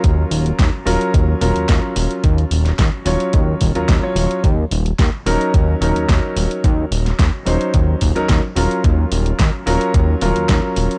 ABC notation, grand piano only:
X:1
M:4/4
L:1/16
Q:1/4=109
K:Gblyd
V:1 name="Grand piano"
[G,DFB]6 [G,DFB]4 [G,DFB]2 [G,DFB]4- | [G,DFB]6 [G,DFd]4- [G,DFd] [G,DFB]2 [G,DFd]3 | z6 [G,DEB]4 [G,DEB]2 [G,DEB]4- | [G,DEB]6 [G,DEc]4- [G,DEc] [G,DEB]2 z [G,DFB]2- |
[G,DFB]6 [G,DFB]4 [G,DFB]2 [G,DFB]4 |]